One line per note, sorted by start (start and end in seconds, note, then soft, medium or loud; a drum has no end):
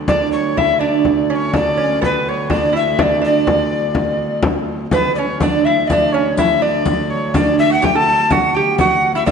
0.00 4.92 D2 medium
0.08 0.57 D4 medium
0.08 0.30 D5 medium
0.08 frame drum medium
0.32 0.59 C#5 medium
0.32 frame drum soft
0.57 0.80 E4 medium
0.57 0.81 E5 loud
0.57 frame drum medium
0.79 1.30 D4 medium
0.79 1.31 D5 medium
1.05 frame drum medium
1.30 1.54 C#4 medium
1.30 1.37 D5 medium
1.36 1.54 C#5 medium
1.53 1.76 D4 medium
1.53 2.00 D5 loud
1.53 frame drum medium
1.77 2.01 C#4 medium
1.77 frame drum soft
2.02 2.52 B3 medium
2.02 2.30 B4 medium
2.02 frame drum medium
2.29 2.51 C#5 medium
2.50 2.72 D4 medium
2.50 2.74 D5 medium
2.50 frame drum medium
2.73 2.99 E4 medium
2.73 3.04 E5 medium
2.99 3.20 D4 medium
2.99 3.24 D5 medium
2.99 frame drum medium
3.22 4.40 D4 medium
3.22 4.41 D5 medium
3.22 frame drum soft
3.47 frame drum medium
3.95 frame drum medium
4.19 frame drum soft
4.43 frame drum medium
4.91 9.31 D2 medium
4.91 5.18 B3 medium
4.91 5.15 B4 medium
4.91 riq medium
4.91 frame drum medium
5.15 5.43 C#4 medium
5.15 5.39 C#5 medium
5.15 5.20 D5 medium
5.40 5.66 D4 medium
5.40 5.66 D5 medium
5.40 riq medium
5.40 frame drum medium
5.65 5.91 E4 medium
5.65 5.89 E5 medium
5.87 6.14 D5 medium
5.87 riq medium
5.87 frame drum medium
5.92 6.16 D4 medium
6.12 6.39 C#4 medium
6.12 6.37 C#5 medium
6.12 frame drum soft
6.37 6.61 E4 medium
6.37 6.63 E5 loud
6.37 riq medium
6.37 frame drum medium
6.62 7.34 D4 medium
6.62 7.12 D5 medium
6.85 riq medium
6.85 frame drum medium
7.10 7.35 C#5 medium
7.34 7.70 D4 medium
7.34 7.58 D5 medium
7.34 riq medium
7.34 frame drum medium
7.59 7.70 E5 medium
7.70 7.83 F#4 medium
7.70 7.86 F#5 medium
7.82 7.95 G4 loud
7.82 7.98 G5 loud
7.82 riq medium
7.82 frame drum medium
7.95 8.32 A4 medium
7.95 8.33 A5 loud
8.30 8.56 F#4 medium
8.30 8.56 F#5 loud
8.30 riq medium
8.30 frame drum medium
8.55 8.81 G4 medium
8.55 8.78 G5 medium
8.78 9.15 F#4 medium
8.78 9.13 F#5 loud
8.78 riq medium
8.78 frame drum medium
9.15 9.26 E4 medium
9.15 9.26 E5 medium
9.26 9.31 D4 medium
9.26 9.31 E5 medium
9.26 riq medium
9.26 frame drum medium